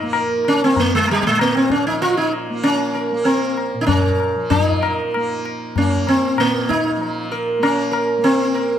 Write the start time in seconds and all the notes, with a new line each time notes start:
Already playing: A#2 F3 A#3 D#4
0.03 A#3
0.13 A#4, tabla na
0.45 C#4, tabla na
0.64 A#3 C4
0.76 A#3, tabla tin, tabla ge
0.95 G#3
1.08 G3, tabla na
1.23 A#2 G#3, tabla ke
1.39 A#3, tabla na
1.57 C4
1.70 C#4, tabla ke
1.87 F3 D#4
2.02 F4, tabla tin
2.17 D#4
2.33 tabla na
2.50 A#3
2.63 C#4, tabla na
2.95 A#4, tabla na
3.12 A#3
3.25 C4 A#4, tabla tin
3.57 tabla na
3.74 A#2
3.81 D#4
3.86 C#4 A#4, tabla tin, tabla ge
4.20 tabla na
4.36 F3
4.50 F3 D#4, tabla tin, tabla ge
4.82 A#4, tabla na
5.14 A#3, tabla na
5.45 tabla na
5.76 A#3 C#4, tabla tin, tabla ge
6.07 C4, tabla na
6.36 A#2 A#3, tabla na
6.69 D#4, tabla ke
6.97 F3
7.01 tabla tin
7.31 A#4, tabla na
7.59 A#3 C#4
7.63 tabla na
7.91 A#4, tabla na
8.18 A#3
8.24 C4, tabla tin
8.54 A#4, tabla na